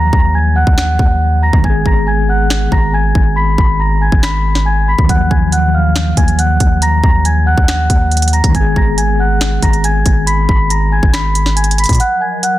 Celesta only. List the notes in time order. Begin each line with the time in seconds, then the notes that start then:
Already playing: A#5 A#6
0.13 A#5 A#6
0.34 G#5 G#6
0.56 F#5 F#6
0.77 F#5 F#6
1.42 A#5 A#6
1.64 G#5 G#6
1.86 A#5 A#6
2.07 G#5 G#6
2.29 F#5 F#6
2.72 A#5 A#6
2.93 G#5 G#6
3.36 B5 B6
3.58 B5 B6
3.80 A#5 A#6
4.01 G#5 G#6
4.23 B5 B6
4.66 G#5 G#6
4.88 B5 B6
5.09 F#5 F#6
5.30 G#5 G#6
5.52 F#5 F#6
5.74 F5 F6
6.17 G#5 G#6
6.38 F#5 F#6
6.82 A#5 A#6
7.04 A#5 A#6
7.25 G#5 G#6
7.46 F#5 F#6
7.68 F#5
8.33 A#5 A#6
8.55 G#5 G#6
8.77 A#5 A#6
8.98 G#5 G#6
9.19 F#5 F#6
9.63 A#5 A#6
9.84 G#5 G#6
10.27 B5 B6
10.49 B5 B6
10.70 A#5 A#6
10.92 G#5 G#6
11.13 B5 B6
11.56 G#5 G#6
11.79 B5 B6
12.00 F#5 F#6
12.21 G#5 G#6
12.43 F#5 F#6